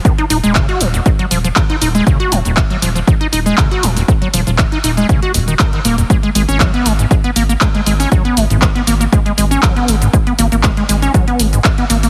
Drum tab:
HH |xxoxxxoxxxoxxxox|xxoxxxoxxxoxxxoo|xxoxxxoxxxoxxxox|xxoxxxoxxxoxxxoo|
SH |x-xxx-xxx-xxx-xx|x-xxx-xxx-xxx-xx|x-xxx-xxx-xxx-xx|x-xxx-xxx-xxx-xx|
CP |----x-------x---|----x-------x---|----x-------x---|----x-------x---|
BD |o---o---o---o---|o---o---o---o---|o---o---o---o---|o---o---o---o---|

HH |xxoxxxoxxxoxxxox|xxoxxxoxxxoxxxoo|
SH |x-xxx-xxx-xxx-xx|x-xxx-xxx-xxx-xx|
CP |----x-------x---|----x-------x---|
BD |o---o---o---o---|o---o---o---o---|